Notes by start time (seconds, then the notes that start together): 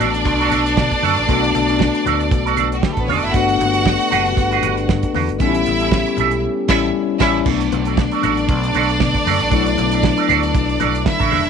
Already playing: A3 B3 D4 F#4 D5
0.00 A1 D4 F#4 A4, closed hi-hat
0.14 muted clean electric guitar stroke, closed hi-hat
0.25 B1, muted clean electric guitar stroke, kick, closed hi-hat, muted conga
0.40 D4 F#4 A4, closed hi-hat
0.50 B1 D4 F#4 A4, closed hi-hat, muted conga, low conga
0.66 closed hi-hat
0.77 B2, kick, snare, high conga
0.91 muted clean electric guitar stroke, kick, closed hi-hat
1.02 F#2 D4 F#4 A4, snare, open hi-hat, high conga
1.17 A1, muted clean electric guitar stroke, closed hi-hat
1.27 B1 A3 B3 D4 F#4 A4, kick, closed hi-hat, muted conga
1.43 muted clean electric guitar stroke, closed hi-hat
1.55 B1, muted clean electric guitar stroke, closed hi-hat, muted conga
1.69 D4 F#4 A4, closed hi-hat
1.79 kick, snare, high conga
1.95 muted clean electric guitar stroke, closed hi-hat
2.06 D2 D4 F#4 A4, closed hi-hat, low conga
2.20 muted clean electric guitar stroke, closed hi-hat
2.31 B1, muted clean electric guitar stroke, kick, closed hi-hat, muted conga
2.46 D4 F#4 A4, closed hi-hat
2.57 B1 D4 F#4 A4, closed hi-hat, muted conga
2.72 F#4, muted clean electric guitar stroke, closed hi-hat
2.82 G3 G4, kick, snare, high conga
2.92 A3 A4
2.97 A1 B3 B4, muted clean electric guitar stroke, kick, closed hi-hat
3.07 E1 C#4 D4 F#4 A4 C#5, open hi-hat, high conga
3.16 D4 D5
3.22 F#1 E4 E5, muted clean electric guitar stroke, closed hi-hat
3.33 G1 G3 A3 B3 D4 F#4 A4 B4 F#5, kick, closed hi-hat
3.48 muted clean electric guitar stroke, closed hi-hat
3.60 G1, muted clean electric guitar stroke, closed hi-hat, muted conga
3.74 D4 F#4 B4, closed hi-hat
3.85 kick, snare, high conga
4.00 muted clean electric guitar stroke, closed hi-hat
4.11 F#1 D4 F#4 B4, closed hi-hat, low conga
4.26 muted clean electric guitar stroke, closed hi-hat
4.37 G1, muted clean electric guitar stroke, kick, closed hi-hat, muted conga
4.51 D4 F#4 B4, closed hi-hat
4.63 G1 D4 F#4 B4, closed hi-hat, muted conga, low conga
4.77 muted clean electric guitar stroke, closed hi-hat
4.89 G2, kick, snare, high conga
5.03 muted clean electric guitar stroke, kick, closed hi-hat
5.15 E2 D4 F#4 B4, snare, open hi-hat, high conga
5.29 G1, muted clean electric guitar stroke, closed hi-hat
5.39 A1 G3 A3 B3 C#4 D#4 E4 G4 A4 E5, kick, closed hi-hat, muted conga
5.49 E4
5.54 muted clean electric guitar stroke, closed hi-hat
5.66 A1, muted clean electric guitar stroke, closed hi-hat, muted conga
5.80 C#4 G4 A4, closed hi-hat
5.91 kick, snare, high conga
6.06 muted clean electric guitar stroke, closed hi-hat
6.17 B1 C#4 G4 A4, closed hi-hat, low conga
6.31 muted clean electric guitar stroke, closed hi-hat
6.68 A1 G3 C#4 E4 G4 A4 E5, kick, snare, crash
7.20 A1 G3 C#4 E4 G4 A4 E5, kick, snare, crash
7.45 B1 F#3 A3 B3 D4 F#4 A4 D5, kick, crash, muted conga
7.61 muted clean electric guitar stroke, closed hi-hat
7.72 B1, muted clean electric guitar stroke, closed hi-hat, muted conga
7.85 D4 F#4 A4, closed hi-hat
7.97 muted clean electric guitar stroke, kick, snare, high conga
8.11 D4 F#4 A4, closed hi-hat
8.23 A1 D4 F#4 A4, closed hi-hat, low conga
8.37 muted clean electric guitar stroke, closed hi-hat
8.49 B1, kick, closed hi-hat, muted conga
8.64 muted clean electric guitar stroke, closed hi-hat
8.74 B1 D4 F#4 A4, closed hi-hat, muted conga
8.89 muted clean electric guitar stroke, closed hi-hat
9.00 B2, muted clean electric guitar stroke, kick, snare, high conga
9.14 muted clean electric guitar stroke, kick, closed hi-hat, high conga
9.26 F#2 D4 F#4 A4, snare, open hi-hat, high conga
9.40 A1 D4 F#4 A4, closed hi-hat
9.50 B1 F#3 A3 D4 E4 F#4 A4, kick, closed hi-hat
9.66 muted clean electric guitar stroke, closed hi-hat
9.78 B1, muted clean electric guitar stroke, closed hi-hat, muted conga
9.91 D4 F#4 A4, closed hi-hat
10.03 muted clean electric guitar stroke, kick, snare, high conga
10.17 D4 F#4 A4, closed hi-hat
10.29 D2 D4 F#4 A4, closed hi-hat, low conga
10.43 muted clean electric guitar stroke, closed hi-hat
10.55 B1, kick, closed hi-hat, muted conga
10.69 muted clean electric guitar stroke, closed hi-hat
10.79 B1 D4 F#4 A4, closed hi-hat, muted conga, low conga
10.95 closed hi-hat
11.05 E4 E5, muted clean electric guitar stroke, kick, snare, high conga
11.19 A1 D4 F#4 A4, kick, closed hi-hat, high conga
11.31 E1 D4 F#4 A4, open hi-hat, high conga
11.45 F#1, closed hi-hat